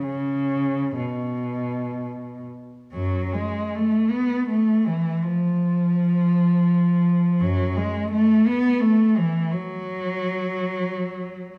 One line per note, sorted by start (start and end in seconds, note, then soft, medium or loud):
0.03 0.95 C#3 medium
0.99 2.43 B2 soft
2.93 3.30 F#2 soft
2.93 3.30 F#3 medium
3.33 3.73 G#3 medium
3.75 4.12 A3 medium
4.10 4.48 B3 medium
4.49 4.85 A3 medium
4.86 5.23 E3 medium
5.23 7.40 F3 medium
7.40 7.73 F#2 soft
7.40 7.76 F#3 medium
7.76 8.11 G#3 medium
8.12 8.46 A3 medium
8.47 8.82 B3 medium
8.81 9.17 A3 medium
9.17 9.52 E3 medium
9.52 11.58 F#3 medium